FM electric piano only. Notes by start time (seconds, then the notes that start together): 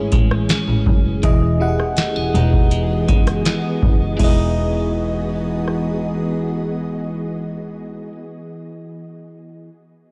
Already playing: A3 E4 G#4 C#5
1.23 E3 E4 G#4 D#5
1.60 E3 E4 G4 F#5
1.68 G#4
4.16 E3 E4
4.21 G#4 D#5